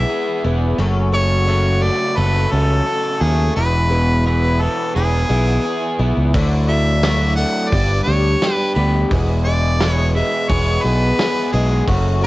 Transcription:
Already playing: overdriven electric guitar B2 E3 B3, twelve-string acoustic guitar E3 B3 E4 G#4, tonewheel organ G#3 B3 E4 G#4, harmonica E5
0.09 overdriven electric guitar G#4
0.44 fingered electric bass E1, twelve-string acoustic guitar E3 B3 E4 G#4
0.78 fingered electric bass F#1, twelve-string acoustic guitar F#2 C#3 F#3 A3 C#4 A4, tonewheel organ C#3 F#3 A3 F#4
1.12 twelve-string acoustic guitar F#2 C#3 F#3 A3 C#4 A4, harmonica C#5
1.47 twelve-string acoustic guitar F#2 C#3 F#3 A3 C#4 A4
1.82 twelve-string acoustic guitar F#3 A3 A4, harmonica D5
2.16 fingered electric bass F#1, twelve-string acoustic guitar F#3 A3 C#4 A4, harmonica B4
2.52 fingered electric bass C#2, twelve-string acoustic guitar F#3 A3 C#4 A4, harmonica A4
2.87 overdriven electric guitar A4
3.21 fingered electric bass D#2, twelve-string acoustic guitar F#3 A3 C#4, harmonica G#4
3.56 fingered electric bass E1, twelve-string acoustic guitar E2 B2 E3 B3 E4 G#4, tonewheel organ E3 B3 E4, harmonica B4
3.90 twelve-string acoustic guitar E2 B2 E3 B3 E4 G#4
4.25 twelve-string acoustic guitar E2 B2 E3 B3 E4 G#4, harmonica B4
4.61 twelve-string acoustic guitar E3 B3 E4, harmonica A4
4.95 fingered electric bass E1, twelve-string acoustic guitar E3 B3 E4 G#4, harmonica G#4
5.29 fingered electric bass B1, twelve-string acoustic guitar E3 B3 E4 G#4
5.66 overdriven electric guitar G#4
5.99 fingered electric bass B1, twelve-string acoustic guitar E3 B3 E4 G#4
6.17 fingered electric bass C#2
6.34 fingered electric bass D2, twelve-string acoustic guitar D3 F#3 A3 D4 E4, tonewheel organ F#3 A3 D4 E4, kick, open hi-hat
6.68 twelve-string acoustic guitar D3 F#3 A3 D4 E4, harmonica E5
7.03 twelve-string acoustic guitar D3 F#3 A3 D4 E4, snare, open hi-hat
7.36 twelve-string acoustic guitar A3 D4 E4, harmonica F#5
7.70 fingered electric bass G1, overdriven electric guitar G2, twelve-string acoustic guitar G3 B3 D4 G4, tonewheel organ G3, harmonica D5, kick, open hi-hat
7.74 tonewheel organ B3 D4 G4
8.04 fingered electric bass D2, twelve-string acoustic guitar G4, harmonica C#5
8.08 twelve-string acoustic guitar G3 B3 D4
8.42 overdriven electric guitar G4, snare, open hi-hat
8.54 harmonica B4
8.74 fingered electric bass D2, twelve-string acoustic guitar B3 D4 G4, harmonica B4
8.79 twelve-string acoustic guitar G3
9.09 fingered electric bass E1, twelve-string acoustic guitar E2 B2 E3 G#3 B3, tonewheel organ G#3 B3 E4 G#4, kick, open hi-hat
9.13 twelve-string acoustic guitar G#4
9.44 twelve-string acoustic guitar E2 B2 E3 G#3 B3 G#4, harmonica D5
9.80 twelve-string acoustic guitar E2 B2 E3 G#3 B3 G#4, snare, open hi-hat
9.90 harmonica C#5
10.15 twelve-string acoustic guitar E3 G#3 B3 G#4, harmonica E5
10.49 fingered electric bass E1, twelve-string acoustic guitar E3 G#3 B3 G#4, harmonica C#5, kick, open hi-hat
10.83 fingered electric bass B1, twelve-string acoustic guitar G#3 B3 G#4, harmonica B4
10.87 twelve-string acoustic guitar E3
11.19 overdriven electric guitar G#4, snare, open hi-hat
11.53 fingered electric bass B1, twelve-string acoustic guitar E3 G#3 B3 G#4, harmonica G#4
11.88 fingered electric bass F#1, twelve-string acoustic guitar F#2 C#3 F#3 A3 C#4 F#4, tonewheel organ A3 C#4 F#4 A4, kick, open hi-hat
12.21 twelve-string acoustic guitar F#2 C#3 F#3 A3 C#4 F#4

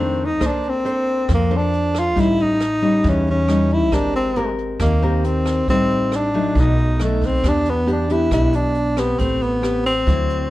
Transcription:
Already playing: nylon-string guitar F2 D#3 A3 D4, upright bass F2, tenor saxophone C4
0.25 tenor saxophone D#4
0.40 upright bass A#1, nylon-string guitar A#3 D4 A4 C5, kick, cross-stick, closed hi-hat
0.47 tenor saxophone D4
0.63 closed hi-hat
0.68 tenor saxophone C4
0.85 nylon-string guitar D4 A4 C5, closed hi-hat
1.07 closed hi-hat
1.29 upright bass F2, nylon-string guitar F3, kick, cross-stick, closed hi-hat
1.34 tenor saxophone A#3
1.50 nylon-string guitar D4 A4 C5, closed hi-hat
1.56 tenor saxophone D4
1.73 closed hi-hat
1.95 cross-stick, closed hi-hat
1.99 tenor saxophone F4
2.15 upright bass A1, nylon-string guitar A2 G3 C#4 D#4, kick, closed hi-hat
2.21 tenor saxophone E4
2.38 tenor saxophone D#4, closed hi-hat
2.60 cross-stick, closed hi-hat
2.82 nylon-string guitar G3 C#4 D#4, closed hi-hat
3.04 upright bass E2, nylon-string guitar E3, kick, closed hi-hat
3.08 tenor saxophone C#4
3.27 tenor saxophone C#4, closed hi-hat
3.48 nylon-string guitar G3 C#4 D#4, cross-stick, closed hi-hat
3.71 tenor saxophone E4, closed hi-hat
3.92 upright bass G#1, nylon-string guitar G#3 C4 G4 A#4, tenor saxophone D4, kick, cross-stick, closed hi-hat
4.14 tenor saxophone C4, closed hi-hat
4.36 nylon-string guitar C4 G4 A#4, closed hi-hat
4.58 closed hi-hat
4.80 upright bass D#2, nylon-string guitar D#3, tenor saxophone A#3, kick, cross-stick, closed hi-hat
5.02 nylon-string guitar C4 G4 A#4, closed hi-hat
5.24 tenor saxophone C4, closed hi-hat
5.46 cross-stick, closed hi-hat
5.68 upright bass A1, nylon-string guitar A2 G3 C4 D#4, tenor saxophone C4, kick, closed hi-hat
5.90 closed hi-hat
6.12 tenor saxophone D4, cross-stick, closed hi-hat
6.34 nylon-string guitar F#3 A3 D#4, closed hi-hat
6.55 upright bass B1, nylon-string guitar B2, kick, closed hi-hat
6.60 tenor saxophone D#4
6.78 closed hi-hat
6.99 nylon-string guitar F#3 A3 D#4, cross-stick, closed hi-hat
7.04 tenor saxophone A3
7.22 kick, closed hi-hat
7.26 tenor saxophone C4
7.44 upright bass E2, nylon-string guitar E3 B3 D4 G4, kick, cross-stick, closed hi-hat
7.48 tenor saxophone D4
7.66 tenor saxophone B3, closed hi-hat
7.87 nylon-string guitar B3 D4 G4, closed hi-hat
7.92 tenor saxophone D4
8.09 nylon-string guitar B3 D4 G4, tenor saxophone E4, closed hi-hat
8.31 upright bass B1, nylon-string guitar B2 B3 D4 G4, tenor saxophone E4, kick, cross-stick, closed hi-hat
8.53 tenor saxophone D4, closed hi-hat
8.75 closed hi-hat
8.97 tenor saxophone B3, nylon-string guitar C4 G4 B4, cross-stick, closed hi-hat
9.18 upright bass A1, nylon-string guitar A3, tenor saxophone C4, kick, closed hi-hat
9.41 tenor saxophone B3, closed hi-hat
9.62 nylon-string guitar C4 G4 B4, cross-stick, closed hi-hat
9.85 tenor saxophone C4, closed hi-hat
10.07 upright bass D2, nylon-string guitar D3 F#3 C4 E4, kick, closed hi-hat
10.30 closed hi-hat

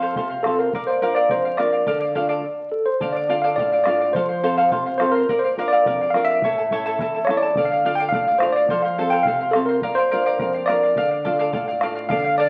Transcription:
Already playing: nylon-string guitar F3 C4 F4 A4, tine electric piano F5
0.02 charango A4 C5 F5
0.16 nylon-string guitar C3, charango A4 C5 F5, bombo low
0.30 charango C5 F5
0.43 nylon-string guitar C4 F4 A4, tine electric piano A4, charango A4 C5 F5, bombo rim
0.59 tine electric piano A#4, charango C5 F5
0.73 nylon-string guitar A#2, charango A#4 D5 F5, bombo low
0.87 tine electric piano C5, charango D5 F5
1.01 nylon-string guitar A#3 D4 F4, charango A#4 D5 F5
1.15 charango A#4 D5 F5, tine electric piano D5
1.29 nylon-string guitar F2, charango A#4 D5 F5, tine electric piano C5, bombo low
1.45 charango D5 F5
1.57 nylon-string guitar A#3 D4 F4, charango A#4 D5 F5, tine electric piano D5, bombo rim
1.72 charango D5 F5
1.86 nylon-string guitar D3, charango A4 D5 F5, bombo low
2.00 charango D5 F5
2.15 nylon-string guitar A3 D4 F4, charango A4 D5 F5, bombo low
2.29 charango A4 D5 F5
2.72 tine electric piano A4
2.86 tine electric piano C5
3.00 nylon-string guitar D3, charango A4 D5 F5, bombo low
3.12 tine electric piano D5, charango D5 F5
3.28 nylon-string guitar A3 D4 F4, charango A4 D5 F5
3.42 charango A4 D5 F5, tine electric piano F5
3.56 nylon-string guitar A2, charango A4 D5 F5, tine electric piano D5, bombo low
3.72 charango D5 F5
3.84 nylon-string guitar A3 D4 F4, charango A4 D5 F5, tine electric piano D5, bombo rim
4.00 charango D5 F5
4.13 nylon-string guitar F3, charango A4 C5 F5, tine electric piano C5, bombo low
4.29 charango C5 F5
4.43 nylon-string guitar C4 F4 A4, charango A4 C5 F5
4.58 charango A4 C5 F5
4.71 nylon-string guitar C3, charango A4 C5 F5, bombo low
4.86 charango C5 F5
4.98 nylon-string guitar C4 F4 A4, charango A4 C5 F5, tine electric piano C5, bombo rim
5.12 tine electric piano A#4, charango F5
5.16 charango C5
5.29 nylon-string guitar A#2, charango A#4 D5 F5, bombo low
5.39 tine electric piano C5
5.44 charango D5 F5
5.57 nylon-string guitar A#3 D4 F4, charango A#4 D5 F5
5.68 tine electric piano D5
5.73 charango A#4 D5 F5
5.86 nylon-string guitar F2, charango A#4 D5 F5, bombo low
6.01 charango D5 F5
6.10 nylon-string guitar A#3 D4, tine electric piano F5, bombo rim
6.14 nylon-string guitar F4, charango A#4 D5 F5
6.25 tine electric piano E5
6.30 charango D5 F5
6.42 nylon-string guitar A2, charango E4 A4 C#5 E5 A5, bombo low
6.58 charango E4 A4 A5
6.70 nylon-string guitar A3 C#4 E4, charango E4 A4 C#5 E5 A5, bombo low
6.86 charango E4 A4 C#5 E5 A5
6.99 nylon-string guitar E2, charango E4 A4 E5 A5, bombo low
7.15 charango E4 A4 A5
7.25 nylon-string guitar A3 C#4 E4, tine electric piano C#5, bombo rim
7.29 charango E4 A4 E5 A5
7.37 tine electric piano D5
7.42 charango E4 A4 A5
7.55 nylon-string guitar D3, charango A4 D5 F5, bombo low
7.65 tine electric piano F5
7.72 charango D5 F5
7.84 nylon-string guitar A3 D4 F4, charango A4 D5 F5
7.95 tine electric piano G5
8.00 charango A4 D5 F5
8.09 nylon-string guitar A2, tine electric piano F5, bombo low
8.13 charango A4 D5 F5
8.27 charango D5 F5
8.38 nylon-string guitar A3 D4 F4, charango A4 D5, tine electric piano C5, bombo rim
8.43 charango F5
8.52 tine electric piano D5, charango F5
8.57 charango D5
8.68 nylon-string guitar F3, charango A4 C5 F5, bombo low
8.82 charango C5 F5, tine electric piano F5
8.98 nylon-string guitar C4 F4 A4, charango A4 C5 F5
9.10 charango A4 C5 F5, tine electric piano G5
9.23 nylon-string guitar C3, charango A4, tine electric piano F5, bombo low
9.28 charango C5 F5
9.40 charango C5 F5
9.51 nylon-string guitar C4, tine electric piano A4, charango A4 C5, bombo rim
9.55 nylon-string guitar F4 A4, charango F5
9.66 tine electric piano A#4, charango F5
9.70 charango C5
9.81 nylon-string guitar A#2, charango A#4 D5 F5, bombo low
9.95 tine electric piano C5, charango F5
9.99 charango D5
10.11 nylon-string guitar A#3 D4 F4, charango A#4 D5 F5
10.26 charango A#4 D5 F5
10.39 nylon-string guitar F2, charango A#4 D5 F5, bombo low
10.54 charango D5 F5
10.66 nylon-string guitar A#3 D4 F4, charango A#4 D5 F5, tine electric piano D5, bombo rim
10.83 charango D5 F5
10.96 nylon-string guitar D3, charango A4 D5 F5, bombo low
11.11 charango D5 F5
11.25 nylon-string guitar A3 D4 F4, charango A4 D5 F5, bombo low
11.39 charango A4 D5 F5
11.53 nylon-string guitar A2, charango A4 D5 F5, bombo low
11.68 charango D5 F5
11.81 nylon-string guitar A3 D4 F4, charango A4 D5 F5, bombo rim
11.95 charango D5 F5
12.09 nylon-string guitar D3, charango A4 D5 F5, tine electric piano F5, quena F5, bombo low
12.24 charango D5 F5
12.38 charango A4 D5 F5, tine electric piano D5, quena D5

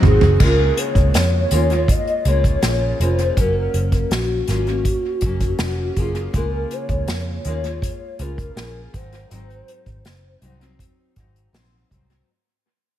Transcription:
Already playing: ambient pad D#3 G#3 C4 F#4, steel-string acoustic guitar F#3 C4 D#4
0.02 picked electric bass G#1, soft synth lead G#4, mid tom
0.21 picked electric bass F#1, floor tom
0.40 picked electric bass C#2, steel-string acoustic guitar C#3 G#3 A#3 F4, soft synth lead A#4, kick, crash
0.77 soft synth lead C#5, closed hi-hat
0.95 picked electric bass C#2, kick, closed hi-hat
1.14 picked electric bass F2, soft synth lead C#5, snare, closed hi-hat
1.50 picked electric bass D#2, steel-string acoustic guitar C#3 G#3 A#3 F4, closed hi-hat
1.70 steel-string acoustic guitar G#3 A#3 F4, closed hi-hat
1.88 soft synth lead D#5, kick, closed hi-hat
2.07 closed hi-hat
2.25 picked electric bass C#2, steel-string acoustic guitar C#3 G#3 A#3 F4, soft synth lead C#5, closed hi-hat
2.44 kick, closed hi-hat
2.61 picked electric bass A#1, steel-string acoustic guitar C#3 G#3 A#3 F4, snare, closed hi-hat
2.99 picked electric bass F1, steel-string acoustic guitar C#3 G#3 A#3 F4, soft synth lead C5, closed hi-hat
3.19 closed hi-hat
3.37 picked electric bass F#1, steel-string acoustic guitar F#3 A#3 C#4, soft synth lead A#4, kick, closed hi-hat
3.74 picked electric bass F#1, closed hi-hat
3.92 kick, closed hi-hat
4.11 picked electric bass A#1, soft synth lead F#4, snare, closed hi-hat
4.47 picked electric bass G#1, steel-string acoustic guitar F#3 A#3 C#4 F4, snare, closed hi-hat
4.67 steel-string acoustic guitar A#3 C#4, closed hi-hat
4.85 kick, closed hi-hat
5.21 picked electric bass F#1, steel-string acoustic guitar F#3 A#3, kick, closed hi-hat
5.26 steel-string acoustic guitar C#4
5.40 kick, closed hi-hat
5.59 picked electric bass F1, steel-string acoustic guitar F#3 A#3 C#4, snare, closed hi-hat
5.96 picked electric bass F#1, steel-string acoustic guitar F#3 A#3 C#4 F4, soft synth lead G#4, kick, closed hi-hat
6.15 closed hi-hat
6.33 picked electric bass C#2, steel-string acoustic guitar C#3 G#3 A#3 F4, soft synth lead A#4, kick, closed hi-hat
6.71 soft synth lead C#5, closed hi-hat
6.89 picked electric bass C#2, kick, closed hi-hat
7.07 picked electric bass F2, snare, closed hi-hat
7.45 picked electric bass D#2, steel-string acoustic guitar C#3 G#3 A#3 F4, soft synth lead C#5, closed hi-hat
7.63 steel-string acoustic guitar G#3 A#3 F4, closed hi-hat
7.82 kick, closed hi-hat
8.19 picked electric bass C#2, steel-string acoustic guitar C#3 G#3 A#3 F4, soft synth lead A#4, closed hi-hat
8.38 kick, closed hi-hat
8.55 picked electric bass A#1, steel-string acoustic guitar C#3 G#3 A#3 F4, snare, closed hi-hat
8.92 picked electric bass G#1, steel-string acoustic guitar G#2 F#3 C4 D#4, soft synth lead C5, kick, closed hi-hat
9.12 closed hi-hat
9.30 picked electric bass G#1, steel-string acoustic guitar G#2 F#3 C4 D#4, closed hi-hat
9.50 closed hi-hat
9.68 closed hi-hat
9.86 picked electric bass G#1, kick, closed hi-hat
10.05 picked electric bass F#1, snare, closed hi-hat
10.41 picked electric bass C2, steel-string acoustic guitar G#2 F#3 C4 D#4, closed hi-hat
10.60 steel-string acoustic guitar F#3 C4 D#4, closed hi-hat
10.79 kick, closed hi-hat
11.16 picked electric bass G#1, steel-string acoustic guitar G#2 F#3 C4 D#4, kick, closed hi-hat
11.36 closed hi-hat
11.53 picked electric bass A#1, steel-string acoustic guitar G#2 F#3 C4 D#4, snare, closed hi-hat
11.91 picked electric bass C2, steel-string acoustic guitar G#2 F#3 C4 D#4, kick, closed hi-hat
12.10 closed hi-hat

